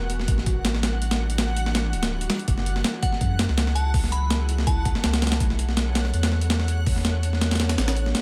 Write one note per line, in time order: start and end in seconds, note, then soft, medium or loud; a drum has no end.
0.00 0.27 E1 medium
0.00 8.22 F#5 medium
0.00 8.22 F#6 medium
0.10 closed hi-hat medium
0.20 snare soft
0.28 1.95 A1 medium
0.28 kick loud
0.28 closed hi-hat medium
0.38 snare soft
0.46 kick loud
0.46 closed hi-hat medium
0.65 snare loud
0.65 closed hi-hat medium
0.75 snare medium
0.83 snare loud
0.83 closed hi-hat medium
1.02 closed hi-hat medium
1.11 snare loud
1.11 closed hi-hat medium
1.30 closed hi-hat medium
1.38 snare loud
1.38 closed hi-hat medium
1.56 closed hi-hat medium
1.66 snare medium
1.75 snare loud
1.75 closed hi-hat medium
1.93 2.28 D1 medium
1.93 closed hi-hat medium
2.03 snare loud
2.03 closed hi-hat medium
2.21 closed hi-hat medium
2.30 snare loud
2.30 closed hi-hat medium
2.39 closed hi-hat soft
2.48 2.83 F#1 loud
2.48 kick loud
2.48 closed hi-hat medium
2.58 snare soft
2.66 closed hi-hat medium
2.76 snare soft
2.84 snare loud
2.84 closed hi-hat medium
3.03 3.31 F#5 medium
3.03 kick loud
3.03 closed hi-hat medium
3.13 snare soft
3.21 3.47 F#2 medium
3.21 kick medium
3.21 closed hi-hat medium
3.39 snare loud
3.39 closed hi-hat medium
3.49 4.94 C#2 medium
3.49 snare soft
3.58 snare loud
3.58 closed hi-hat medium
3.67 snare medium
3.75 4.04 A5 medium
3.75 closed hi-hat medium
3.94 kick loud
3.94 open hi-hat medium
4.04 snare soft
4.12 4.34 B5 loud
4.12 closed hi-hat medium
4.30 snare loud
4.30 closed hi-hat medium
4.49 closed hi-hat medium
4.58 snare medium
4.67 5.19 A5 medium
4.67 kick loud
4.67 closed hi-hat medium
4.85 kick loud
4.85 closed hi-hat medium
4.95 snare medium
5.04 5.42 C#2 medium
5.04 snare loud
5.04 closed hi-hat medium
5.13 snare loud
5.13 closed hi-hat medium
5.22 snare medium
5.22 closed hi-hat medium
5.27 snare medium
5.27 closed hi-hat medium
5.32 snare loud
5.32 closed hi-hat medium
5.40 6.12 B1 medium
5.40 kick loud
5.40 closed hi-hat medium
5.50 snare soft
5.59 closed hi-hat medium
5.69 snare soft
5.77 snare loud
5.77 closed hi-hat medium
5.95 snare loud
5.95 closed hi-hat medium
6.05 snare soft
6.13 7.77 E2 medium
6.13 closed hi-hat medium
6.23 snare loud
6.23 closed hi-hat medium
6.32 snare soft
6.41 closed hi-hat medium
6.50 snare loud
6.50 closed hi-hat medium
6.60 snare medium
6.68 closed hi-hat medium
6.86 kick loud
6.86 open hi-hat medium
6.96 snare soft
7.05 snare loud
7.05 closed hi-hat medium
7.23 closed hi-hat medium
7.33 snare soft
7.41 snare loud
7.41 closed hi-hat medium
7.51 snare medium
7.51 closed hi-hat medium
7.55 snare medium
7.55 closed hi-hat medium
7.60 snare loud
7.60 closed hi-hat medium
7.69 snare loud
7.69 closed hi-hat medium
7.78 8.14 A1 medium
7.78 snare loud
7.78 closed hi-hat medium
7.88 snare loud
7.88 closed hi-hat medium
7.97 closed hi-hat medium
8.06 snare soft
8.15 snare loud
8.15 closed hi-hat medium